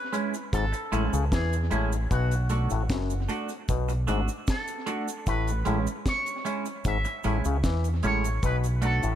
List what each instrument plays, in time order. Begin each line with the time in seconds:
Already playing: clean electric guitar B4
0.12 clean electric guitar G#3 C#4 E4, closed hi-hat, cabasa
0.34 closed hi-hat, cabasa
0.53 fingered electric bass G#1, clav G#2, clean electric guitar A4, kick, closed hi-hat, cabasa
0.72 muted clean electric guitar stroke, closed hi-hat, cabasa
0.92 fingered electric bass A1, clav A2, clean electric guitar G#3 C#4 E4, closed hi-hat, cabasa
1.13 fingered electric bass C#2, clav C#3, closed hi-hat, cabasa
1.32 fingered electric bass E2, clav E3, clean electric guitar G#4, kick, snare, closed hi-hat, cabasa
1.53 closed hi-hat, cabasa
1.71 fingered electric bass A1, clav A2, clean electric guitar G#3 C#4 E4, closed hi-hat, cabasa
1.92 closed hi-hat, cabasa
2.11 fingered electric bass B1, clav B2, clean electric guitar F#4, kick, closed hi-hat, cabasa
2.31 closed hi-hat, cabasa
2.49 clean electric guitar A3 D4 F#4, closed hi-hat, cabasa
2.70 fingered electric bass A1, clav A2, closed hi-hat, cabasa
2.89 fingered electric bass F#1, clav F#2, kick, snare, closed hi-hat, cabasa
3.10 closed hi-hat, cabasa
3.29 clean electric guitar A3 D4 F#4, closed hi-hat, cabasa
3.49 closed hi-hat, cabasa
3.69 fingered electric bass B1, clav B2, kick, closed hi-hat, cabasa
3.89 muted clean electric guitar stroke, closed hi-hat, cabasa
4.07 fingered electric bass G#1, clav G#2, clean electric guitar A3 D4 F#4, closed hi-hat, cabasa
4.28 closed hi-hat, cabasa
4.47 clean electric guitar A4, kick, snare, closed hi-hat, cabasa
4.68 closed hi-hat, cabasa
4.86 clean electric guitar A3 D4 F#4, closed hi-hat, cabasa
5.08 closed hi-hat, cabasa
5.26 fingered electric bass A1, clav A2, clean electric guitar B4, kick, closed hi-hat, cabasa
5.47 closed hi-hat, cabasa
5.65 fingered electric bass A1, clav A2, clean electric guitar G#3 C#4 E4, closed hi-hat, cabasa
5.87 closed hi-hat, cabasa
6.06 clean electric guitar C#5, kick, snare, closed hi-hat, cabasa
6.26 closed hi-hat, cabasa
6.45 clean electric guitar G#3 C#4 E4, closed hi-hat, cabasa
6.66 closed hi-hat, cabasa
6.85 fingered electric bass G#1, clav G#2, clean electric guitar E5, kick, closed hi-hat, cabasa
7.05 muted clean electric guitar stroke, closed hi-hat, cabasa
7.24 fingered electric bass A1, clav A2, clean electric guitar G#3 C#4 E4, closed hi-hat, cabasa
7.45 fingered electric bass C#2, clav C#3, closed hi-hat, cabasa
7.64 fingered electric bass E2, clav E3, kick, snare, closed hi-hat, cabasa
7.84 closed hi-hat, cabasa
8.03 fingered electric bass A1, clav A2, clean electric guitar G#3 C#4 E4 C#5, closed hi-hat, cabasa
8.24 closed hi-hat, cabasa
8.43 fingered electric bass B1, clav B2, clean electric guitar B4, kick, closed hi-hat, cabasa
8.64 closed hi-hat, cabasa
8.82 clean electric guitar A3 D4 F#4 A4, closed hi-hat, cabasa
9.03 fingered electric bass A1, clav A2, closed hi-hat, cabasa